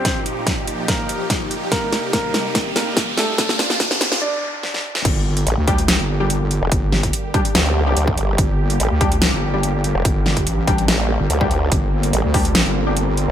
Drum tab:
CC |----------------|----------------|----------------|x---------------|
HH |x-x-x-x-x-x-x-x-|x-x-x-x-x-x-x-x-|x-x-x-x---------|x--xx-xxx---x-x-|
SD |o---o---o---o---|o-o-o-o-o-o-o-o-|oooooooo----oo-o|--------o-------|
BD |o---o---o---o---|o---o---o---o---|o---o-----------|o-----o---------|

CC |----------------|----------------|----------------|----------------|
HH |x--xx-xxx---x-x-|x--xx-xxx---x-x-|x--xx-xxx---x-x-|x--xx-oxx---x-x-|
SD |--o-----o-------|--------o-------|--o-----o-------|--------o-------|
BD |o--o--o------o--|o-----o---------|o--o--o------o--|o-----o---------|